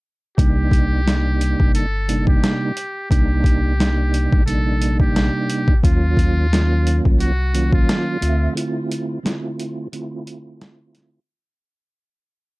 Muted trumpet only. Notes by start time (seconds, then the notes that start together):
0.37 G4
1.75 A4
2.28 G4
3.11 G4
4.46 A4
5.00 G4
5.84 F4
7.20 F#4
7.73 F4